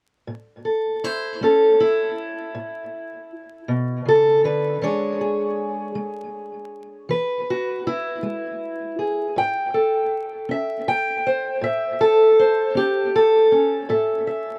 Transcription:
0, 0, Header, 1, 2, 480
1, 0, Start_track
1, 0, Key_signature, 3, "major"
1, 0, Tempo, 756620
1, 176, Time_signature, 12, 3, 24, 8
1, 9255, End_track
2, 0, Start_track
2, 0, Title_t, "Steel-string acoustic guitar"
2, 0, Program_c, 0, 25
2, 173, Note_on_c, 0, 45, 59
2, 412, Note_on_c, 0, 69, 43
2, 608, Note_off_c, 0, 45, 0
2, 659, Note_on_c, 0, 64, 73
2, 663, Note_off_c, 0, 69, 0
2, 663, Note_on_c, 0, 72, 75
2, 894, Note_on_c, 0, 57, 49
2, 899, Note_off_c, 0, 64, 0
2, 901, Note_off_c, 0, 72, 0
2, 904, Note_on_c, 0, 61, 57
2, 912, Note_on_c, 0, 69, 65
2, 1142, Note_off_c, 0, 61, 0
2, 1144, Note_on_c, 0, 64, 77
2, 1329, Note_off_c, 0, 57, 0
2, 1615, Note_on_c, 0, 45, 64
2, 1626, Note_off_c, 0, 69, 0
2, 2050, Note_off_c, 0, 45, 0
2, 2103, Note_off_c, 0, 64, 0
2, 2335, Note_on_c, 0, 47, 58
2, 2569, Note_off_c, 0, 47, 0
2, 2572, Note_on_c, 0, 49, 49
2, 2591, Note_on_c, 0, 69, 86
2, 2817, Note_off_c, 0, 49, 0
2, 2818, Note_on_c, 0, 50, 56
2, 2822, Note_off_c, 0, 69, 0
2, 2824, Note_on_c, 0, 71, 74
2, 3054, Note_off_c, 0, 50, 0
2, 3057, Note_on_c, 0, 52, 65
2, 3059, Note_on_c, 0, 56, 41
2, 3063, Note_off_c, 0, 71, 0
2, 3064, Note_on_c, 0, 62, 42
2, 3068, Note_on_c, 0, 73, 86
2, 3073, Note_on_c, 0, 68, 41
2, 3296, Note_off_c, 0, 68, 0
2, 3304, Note_on_c, 0, 68, 43
2, 3492, Note_off_c, 0, 52, 0
2, 3768, Note_off_c, 0, 56, 0
2, 3776, Note_on_c, 0, 56, 54
2, 4211, Note_off_c, 0, 56, 0
2, 4497, Note_on_c, 0, 52, 69
2, 4504, Note_off_c, 0, 73, 0
2, 4507, Note_on_c, 0, 71, 73
2, 4744, Note_off_c, 0, 68, 0
2, 4759, Note_on_c, 0, 66, 70
2, 4932, Note_off_c, 0, 52, 0
2, 4989, Note_off_c, 0, 66, 0
2, 4992, Note_on_c, 0, 64, 80
2, 5220, Note_on_c, 0, 56, 56
2, 5653, Note_off_c, 0, 56, 0
2, 5699, Note_off_c, 0, 64, 0
2, 5701, Note_on_c, 0, 68, 40
2, 5704, Note_off_c, 0, 71, 0
2, 5912, Note_off_c, 0, 68, 0
2, 5914, Note_off_c, 0, 62, 0
2, 5939, Note_on_c, 0, 45, 62
2, 5950, Note_on_c, 0, 79, 86
2, 6180, Note_on_c, 0, 69, 48
2, 6372, Note_off_c, 0, 45, 0
2, 6425, Note_off_c, 0, 79, 0
2, 6653, Note_on_c, 0, 61, 57
2, 6668, Note_on_c, 0, 76, 67
2, 6900, Note_off_c, 0, 76, 0
2, 6902, Note_on_c, 0, 79, 85
2, 7088, Note_off_c, 0, 61, 0
2, 7140, Note_off_c, 0, 79, 0
2, 7147, Note_on_c, 0, 72, 70
2, 7368, Note_on_c, 0, 45, 71
2, 7382, Note_off_c, 0, 72, 0
2, 7382, Note_on_c, 0, 76, 72
2, 7615, Note_off_c, 0, 76, 0
2, 7617, Note_off_c, 0, 69, 0
2, 7617, Note_on_c, 0, 69, 84
2, 7804, Note_off_c, 0, 45, 0
2, 7862, Note_on_c, 0, 72, 73
2, 8088, Note_on_c, 0, 61, 65
2, 8099, Note_off_c, 0, 72, 0
2, 8101, Note_on_c, 0, 67, 84
2, 8335, Note_off_c, 0, 69, 0
2, 8337, Note_off_c, 0, 67, 0
2, 8346, Note_on_c, 0, 69, 87
2, 8522, Note_off_c, 0, 61, 0
2, 8576, Note_on_c, 0, 61, 46
2, 8808, Note_off_c, 0, 69, 0
2, 8812, Note_on_c, 0, 45, 70
2, 8816, Note_on_c, 0, 69, 46
2, 8819, Note_on_c, 0, 76, 44
2, 9051, Note_off_c, 0, 76, 0
2, 9053, Note_on_c, 0, 76, 50
2, 9242, Note_off_c, 0, 45, 0
2, 9255, Note_off_c, 0, 61, 0
2, 9255, Note_off_c, 0, 69, 0
2, 9255, Note_off_c, 0, 76, 0
2, 9255, End_track
0, 0, End_of_file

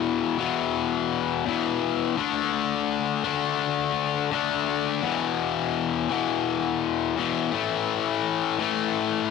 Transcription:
0, 0, Header, 1, 2, 480
1, 0, Start_track
1, 0, Tempo, 713436
1, 1465, Time_signature, 4, 2, 24, 8
1, 6260, End_track
2, 0, Start_track
2, 0, Title_t, "Distorted electric guitar"
2, 0, Program_c, 0, 30
2, 0, Note_on_c, 0, 40, 83
2, 0, Note_on_c, 0, 47, 80
2, 0, Note_on_c, 0, 52, 85
2, 248, Note_off_c, 0, 40, 0
2, 251, Note_off_c, 0, 52, 0
2, 254, Note_off_c, 0, 47, 0
2, 259, Note_on_c, 0, 52, 81
2, 272, Note_on_c, 0, 47, 65
2, 284, Note_on_c, 0, 40, 49
2, 967, Note_off_c, 0, 52, 0
2, 970, Note_off_c, 0, 40, 0
2, 974, Note_off_c, 0, 47, 0
2, 979, Note_on_c, 0, 40, 73
2, 990, Note_on_c, 0, 47, 71
2, 1001, Note_on_c, 0, 52, 69
2, 1447, Note_off_c, 0, 40, 0
2, 1453, Note_off_c, 0, 47, 0
2, 1456, Note_on_c, 0, 50, 79
2, 1459, Note_off_c, 0, 52, 0
2, 1470, Note_on_c, 0, 57, 86
2, 1479, Note_on_c, 0, 62, 90
2, 2167, Note_off_c, 0, 50, 0
2, 2171, Note_off_c, 0, 62, 0
2, 2174, Note_off_c, 0, 57, 0
2, 2179, Note_on_c, 0, 62, 67
2, 2190, Note_on_c, 0, 57, 64
2, 2201, Note_on_c, 0, 50, 59
2, 2889, Note_off_c, 0, 62, 0
2, 2891, Note_off_c, 0, 50, 0
2, 2894, Note_off_c, 0, 57, 0
2, 2899, Note_on_c, 0, 50, 67
2, 2914, Note_on_c, 0, 57, 71
2, 2923, Note_on_c, 0, 62, 65
2, 3369, Note_off_c, 0, 50, 0
2, 3376, Note_off_c, 0, 57, 0
2, 3378, Note_on_c, 0, 40, 93
2, 3381, Note_off_c, 0, 62, 0
2, 3390, Note_on_c, 0, 47, 87
2, 3401, Note_on_c, 0, 52, 90
2, 4088, Note_off_c, 0, 40, 0
2, 4094, Note_off_c, 0, 47, 0
2, 4098, Note_off_c, 0, 52, 0
2, 4101, Note_on_c, 0, 52, 68
2, 4114, Note_on_c, 0, 47, 64
2, 4123, Note_on_c, 0, 40, 59
2, 4814, Note_off_c, 0, 40, 0
2, 4815, Note_off_c, 0, 47, 0
2, 4822, Note_on_c, 0, 40, 57
2, 4836, Note_on_c, 0, 47, 66
2, 4841, Note_off_c, 0, 52, 0
2, 4844, Note_on_c, 0, 52, 74
2, 5050, Note_off_c, 0, 40, 0
2, 5056, Note_off_c, 0, 47, 0
2, 5063, Note_on_c, 0, 45, 70
2, 5074, Note_off_c, 0, 52, 0
2, 5077, Note_on_c, 0, 52, 84
2, 5086, Note_on_c, 0, 57, 80
2, 5768, Note_off_c, 0, 45, 0
2, 5780, Note_off_c, 0, 57, 0
2, 5780, Note_on_c, 0, 45, 72
2, 5788, Note_off_c, 0, 52, 0
2, 5791, Note_on_c, 0, 52, 71
2, 5804, Note_on_c, 0, 57, 76
2, 6260, Note_off_c, 0, 45, 0
2, 6260, Note_off_c, 0, 52, 0
2, 6260, Note_off_c, 0, 57, 0
2, 6260, End_track
0, 0, End_of_file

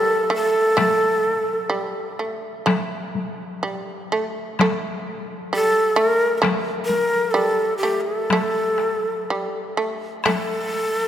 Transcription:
0, 0, Header, 1, 4, 480
1, 0, Start_track
1, 0, Tempo, 917431
1, 416, Time_signature, 2, 2, 24, 8
1, 900, Tempo, 963082
1, 2340, Tempo, 924499
1, 4260, Tempo, 974026
1, 5625, End_track
2, 0, Start_track
2, 0, Title_t, "Shakuhachi"
2, 0, Program_c, 0, 77
2, 0, Note_on_c, 0, 69, 93
2, 175, Note_off_c, 0, 69, 0
2, 187, Note_on_c, 0, 69, 98
2, 1123, Note_off_c, 0, 69, 0
2, 2829, Note_on_c, 0, 69, 91
2, 3045, Note_on_c, 0, 70, 97
2, 3053, Note_off_c, 0, 69, 0
2, 3257, Note_off_c, 0, 70, 0
2, 3257, Note_on_c, 0, 70, 67
2, 3292, Note_off_c, 0, 70, 0
2, 3502, Note_on_c, 0, 70, 93
2, 3743, Note_on_c, 0, 69, 86
2, 3751, Note_off_c, 0, 70, 0
2, 3981, Note_off_c, 0, 69, 0
2, 3984, Note_on_c, 0, 67, 73
2, 4104, Note_on_c, 0, 69, 79
2, 4112, Note_off_c, 0, 67, 0
2, 4961, Note_off_c, 0, 69, 0
2, 5215, Note_on_c, 0, 69, 87
2, 5625, Note_off_c, 0, 69, 0
2, 5625, End_track
3, 0, Start_track
3, 0, Title_t, "Shamisen"
3, 0, Program_c, 1, 106
3, 0, Note_on_c, 1, 55, 77
3, 155, Note_off_c, 1, 55, 0
3, 157, Note_on_c, 1, 57, 73
3, 396, Note_off_c, 1, 57, 0
3, 402, Note_on_c, 1, 57, 71
3, 885, Note_off_c, 1, 57, 0
3, 887, Note_on_c, 1, 55, 62
3, 1132, Note_off_c, 1, 55, 0
3, 1136, Note_on_c, 1, 57, 54
3, 1362, Note_off_c, 1, 57, 0
3, 1368, Note_on_c, 1, 57, 73
3, 1849, Note_off_c, 1, 57, 0
3, 1851, Note_on_c, 1, 55, 59
3, 2094, Note_off_c, 1, 55, 0
3, 2096, Note_on_c, 1, 57, 69
3, 2334, Note_off_c, 1, 57, 0
3, 2340, Note_on_c, 1, 57, 79
3, 2815, Note_off_c, 1, 57, 0
3, 2817, Note_on_c, 1, 55, 70
3, 3041, Note_off_c, 1, 55, 0
3, 3043, Note_on_c, 1, 57, 78
3, 3272, Note_off_c, 1, 57, 0
3, 3278, Note_on_c, 1, 57, 89
3, 3756, Note_off_c, 1, 57, 0
3, 3758, Note_on_c, 1, 55, 77
3, 4009, Note_off_c, 1, 55, 0
3, 4013, Note_on_c, 1, 57, 68
3, 4259, Note_off_c, 1, 57, 0
3, 4269, Note_on_c, 1, 57, 73
3, 4739, Note_off_c, 1, 57, 0
3, 4751, Note_on_c, 1, 55, 55
3, 4980, Note_off_c, 1, 55, 0
3, 4982, Note_on_c, 1, 57, 60
3, 5215, Note_off_c, 1, 57, 0
3, 5221, Note_on_c, 1, 57, 74
3, 5625, Note_off_c, 1, 57, 0
3, 5625, End_track
4, 0, Start_track
4, 0, Title_t, "Taiko and cinematic ensemble drums"
4, 406, Note_on_c, 9, 37, 57
4, 406, Note_on_c, 9, 48, 59
4, 459, Note_off_c, 9, 37, 0
4, 459, Note_off_c, 9, 48, 0
4, 1372, Note_on_c, 9, 37, 60
4, 1372, Note_on_c, 9, 48, 57
4, 1422, Note_off_c, 9, 37, 0
4, 1422, Note_off_c, 9, 48, 0
4, 1617, Note_on_c, 9, 48, 43
4, 1666, Note_off_c, 9, 48, 0
4, 2333, Note_on_c, 9, 37, 58
4, 2333, Note_on_c, 9, 48, 57
4, 2384, Note_off_c, 9, 37, 0
4, 2384, Note_off_c, 9, 48, 0
4, 3287, Note_on_c, 9, 37, 63
4, 3287, Note_on_c, 9, 48, 59
4, 3339, Note_off_c, 9, 37, 0
4, 3339, Note_off_c, 9, 48, 0
4, 3527, Note_on_c, 9, 48, 48
4, 3579, Note_off_c, 9, 48, 0
4, 4257, Note_on_c, 9, 37, 56
4, 4257, Note_on_c, 9, 48, 58
4, 4307, Note_off_c, 9, 37, 0
4, 4307, Note_off_c, 9, 48, 0
4, 4492, Note_on_c, 9, 37, 40
4, 4542, Note_off_c, 9, 37, 0
4, 5221, Note_on_c, 9, 37, 66
4, 5221, Note_on_c, 9, 48, 66
4, 5270, Note_off_c, 9, 37, 0
4, 5270, Note_off_c, 9, 48, 0
4, 5625, End_track
0, 0, End_of_file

